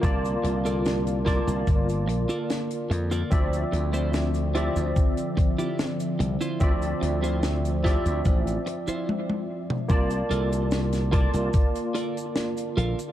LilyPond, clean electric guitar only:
\new Staff \with { instrumentName = "Clean electric guitar" } { \time 4/4 \key c \mixolydian \tempo 4 = 73 r8. <f' a' bes' d''>16 r8 <f' a' bes' d''>16 r4 <f' a' bes' d''>16 r8. <f' a' bes' d''>16 | r8. <e' f' c''>16 r8 <e' f' g'>16 r4 <e' f' g'>16 r8. <e' f' c''>16 | r8. <e' f' c''>16 r8 <e' f' g'>16 r4 <e' f' c''>16 r4 | r8 <f' a' bes' d''>16 r8. <f' a' bes' d''>16 r8. <f' a' bes' d''>16 r8. <f' a' bes' f''>16 r16 | }